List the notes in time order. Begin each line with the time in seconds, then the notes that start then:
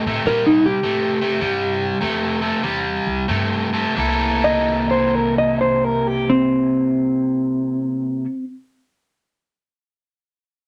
Already playing: D#5
0.06 A2 C3 A3
0.25 A#2 C3 G3 A#4
0.46 D#4
0.66 G4
0.83 A2 C3 A3
1.21 C3 A3
1.41 G2 C3 G3
2.01 F2 C3 A3
2.41 C3 A3
2.63 E2 C3 G3
3.07 C2
3.28 G2 C3 A3
3.73 C3 A3
3.95 C2 C3 A#3 E4
3.99 A4
4.44 D#5
4.91 C5
5.15 A#4
5.38 D#5
5.61 C5
5.84 A#4
6.07 G4
6.30 C4